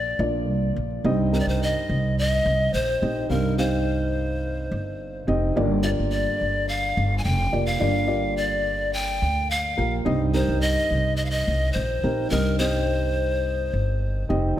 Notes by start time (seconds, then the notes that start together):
Already playing: A#1 A#2 F3 A#3 D4 F4 G#4 D5
0.19 A#1 A#3 D4 F4 D5
0.48 C2
0.76 A#1
1.04 C2 G2 C4 D#4 G4 D#5
1.32 C4 D#4 G4 A#4 C5
1.40 D5
1.47 C2 C5
1.63 D#5
1.90 C2
2.18 D#5
2.46 C2
2.74 A#1 C5
3.01 A#1 C4 D#4 G4 D#5
3.30 C2 G2 C4 D#4 G4 A#4 F5
3.58 C4 D#4 G4 C5 F5
4.72 G1
5.27 F1 C4 D#4 G4 D#5
5.56 G1 G2 D3 A#3 F4 G4 D5
5.83 A#3 F4 G4 D5
5.99 G1
6.11 D5
6.41 G1
6.68 F5
6.97 G1
7.18 G#5
7.24 F1 G5
7.52 F1 A#3 F4 G4 D5
7.66 F5
7.80 G1 G2 D3 A#3 F4 G4 D5
8.07 A#3 F4 G4 D5
8.37 D5
8.93 G5
9.22 D2
9.51 F5
9.77 A#1 A#3 F4 G4 A#4
10.05 C2 G2 C4 D#4 G4 D#5
10.33 C4 D#4 G4 A#4 C5
10.48 C2
10.61 D#5
10.91 C2
11.17 D#5
11.25 F5
11.31 D#5
11.48 C2
11.73 A#1 C5
12.03 A#1 C4 D#4 G4 A#4
12.30 C2 G2 C4 D#4 G4 A#4 D#5
12.59 C4 D#4 G4 C5 D#5
13.73 G1
14.29 F1 C4 D#4 G4 D#5